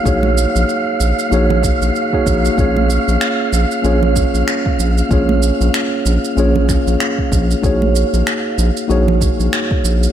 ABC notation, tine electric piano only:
X:1
M:4/4
L:1/16
Q:"Swing 16ths" 1/4=95
K:Bbm
V:1 name="Tine electric piano"
[B,EGAd]8 [B,EGAd]4- [B,EGAd] [B,EGAd]3 | [B,DFAd]8 [B,DFAd]8 | [B,DFAd]8 [B,DFAd]8 | [B,EGAd]8 [B,EGAd]8 |]